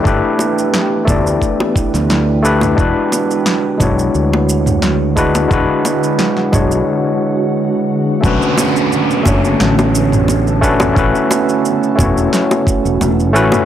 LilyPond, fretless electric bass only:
\new Staff \with { instrumentName = "Fretless electric bass" } { \clef bass \time 4/4 \key e \mixolydian \tempo 4 = 88 g,,16 r4 r16 d,8 r8. d,4~ d,16 | e,,16 r4 r16 b,,8 d,2 | e,,16 r4 r16 b,,8 r2 | b,,16 r4 r16 fis,,8 a,,2 |
a,,16 r4 r16 e,,8 r8. e,,16 e,,8 a,,16 r16 | }